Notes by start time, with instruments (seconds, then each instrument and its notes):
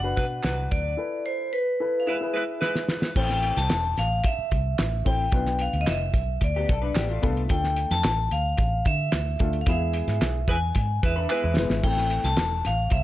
Already playing: fingered electric bass F#1, vibraphone F#5
0.02 upright piano D4 F#4 B4
0.16 fingered electric bass B2, saxophone section F#3 D4 B4, kick, closed hi-hat, tambourine
0.43 fingered electric bass C2, saxophone section F#3 D4 B4, snare, clap, closed hi-hat, tambourine
0.71 fingered electric bass D2, vibraphone D5, kick, closed hi-hat, tambourine
0.97 upright piano E4 A4 B4
1.26 vibraphone C5
1.53 vibraphone B4
1.80 upright piano E4 A4 B4
2.00 vibraphone F5
2.06 saxophone section G#3 E4 B4, upright piano E4 G#4 B4, vibraphone E5
2.21 upright piano E4 G#4 B4
2.34 saxophone section G#3 E4 B4
2.60 saxophone section G#3 E4 B4, snare
2.76 snare
2.88 snare
3.02 snare
3.16 fingered electric bass A1, upright piano C4 E4 A4 C5, vibraphone G5, kick, crash, tambourine
3.30 snare
3.43 closed hi-hat, tambourine
3.57 fingered electric bass C2, vibraphone A5, snare, closed hi-hat
3.70 fingered electric bass E1, snare, clap, closed hi-hat, tambourine
3.97 fingered electric bass A1, vibraphone F5, snare, closed hi-hat, tambourine
4.24 vibraphone E5, kick, closed hi-hat, tambourine
4.39 muted fingered electric bass stroke
4.51 fingered electric bass C2, kick, closed hi-hat, tambourine
4.78 fingered electric bass A1, snare, clap, closed hi-hat, tambourine
5.05 fingered electric bass A1, upright piano C4 E4 A4 C5, vibraphone G5, kick, open hi-hat
5.32 fingered electric bass B1, upright piano B3 D4 F4 B4, kick, closed hi-hat, tambourine
5.46 snare
5.59 vibraphone F5, closed hi-hat, tambourine
5.73 fingered electric bass D2, closed hi-hat
5.81 vibraphone D#5
5.87 fingered electric bass F1, vibraphone E5, snare, clap, closed hi-hat, tambourine
6.14 fingered electric bass B1, kick, closed hi-hat, tambourine
6.41 fingered electric bass D2, vibraphone D5, kick, closed hi-hat, tambourine
6.56 clean electric guitar B3 G4
6.69 fingered electric bass B1, clean electric guitar A4, kick, closed hi-hat, tambourine
6.82 clean electric guitar D4 B4
6.95 fingered electric bass A1, clean electric guitar B3 G4, snare, clap, closed hi-hat, tambourine
7.09 clean electric guitar A3 F4
7.22 fingered electric bass C2, upright piano B3 D4 F4 A4, kick, closed hi-hat, tambourine
7.37 closed hi-hat
7.49 fingered electric bass D2, upright piano A3 D4 F4 A4, vibraphone G5, kick, closed hi-hat, tambourine
7.64 snare
7.76 closed hi-hat, tambourine
7.91 fingered electric bass F2, vibraphone A5, snare, closed hi-hat
8.04 fingered electric bass A1, snare, clap, closed hi-hat, tambourine
8.31 fingered electric bass D2, vibraphone F5, closed hi-hat, tambourine
8.57 fingered electric bass A1, kick, closed hi-hat, tambourine
8.85 fingered electric bass D3, vibraphone E5, kick, closed hi-hat, tambourine
9.12 fingered electric bass D2, snare, clap, closed hi-hat, tambourine
9.39 fingered electric bass D2, upright piano A3 D4 F4 A4, kick, closed hi-hat
9.53 closed hi-hat
9.61 vibraphone F5
9.66 fingered electric bass E2, upright piano G#3 B3 E4 G#4, vibraphone E5, kick, closed hi-hat, tambourine
9.93 closed hi-hat, tambourine
10.08 fingered electric bass G#2, snare, closed hi-hat
10.21 fingered electric bass B1, snare, clap, closed hi-hat, tambourine
10.48 fingered electric bass E2, saxophone section G#3 E4 B4, vibraphone G#5, kick, closed hi-hat, tambourine
10.75 fingered electric bass G#2, kick, closed hi-hat
11.02 fingered electric bass E2, saxophone section G#3 E4 B4, vibraphone E5, kick, closed hi-hat, tambourine
11.16 clean electric guitar D4 B4
11.29 saxophone section G#3 E4 B4, clean electric guitar B3 G#4, clap, tambourine
11.44 fingered electric bass E2, clean electric guitar G#3 E4
11.56 fingered electric bass F1, upright piano G#3 B3 E4 B4, snare, tambourine
11.70 fingered electric bass G#1, snare
11.83 fingered electric bass A1, upright piano A3 C4 E4 A4, vibraphone G5, kick, tambourine, crash
11.97 snare
12.10 closed hi-hat, tambourine
12.24 fingered electric bass C2, vibraphone A5, snare, closed hi-hat
12.37 fingered electric bass E1, snare, clap, closed hi-hat, tambourine
12.65 fingered electric bass A1, vibraphone F5, snare, closed hi-hat, tambourine
12.90 fingered electric bass C2, vibraphone E5, kick, closed hi-hat, tambourine